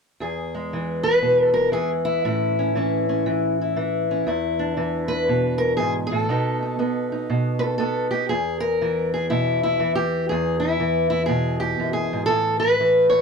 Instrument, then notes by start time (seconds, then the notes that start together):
steel-string acoustic guitar
0.20 E2 G#4
0.55 G#3
0.73 E3
1.03 B4
1.22 B2
1.54 A#4
1.72 E3 G#4
2.05 E4
2.25 A2 C#4
2.59 C#4
2.75 E3 C#4
3.09 C#4
3.26 E3
3.61 E4
3.76 E3
4.11 C#4
4.27 E2 E4
4.59 D4
4.77 E3
5.08 B4
5.29 B2
5.58 A#4
5.77 G#2 G#4
6.07 A4
6.12 A2
6.29 B2 B3 D#4
6.63 D#4
6.79 B3 D#4
7.12 D#4
7.30 B2
7.59 A4 B4
7.78 B3 A4
8.11 D#4 G4
8.29 E2 G#4
8.60 A#4
8.82 E3
9.14 G#4
9.30 B2 E4
9.63 E4
9.80 E3
9.95 G4
10.29 E2 G#4
10.60 E4
10.80 E3
11.10 E4
11.26 B2 G#4
11.60 G4
11.79 F#2
11.93 G#4
12.13 G#2
12.26 A4
12.30 A2
12.60 B4
12.80 E3
13.10 C#5